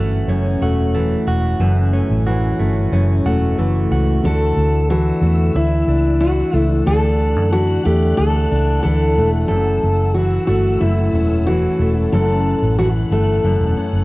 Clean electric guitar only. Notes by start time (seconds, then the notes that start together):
Already playing: E3 A3 C#4 F#4
0.30 C#4
0.63 F#4
0.95 A3
1.28 F#4
1.61 E3
1.93 C#4
2.26 F#4
2.59 A3
2.93 C#4
3.26 F#4
3.59 A3
3.92 F#4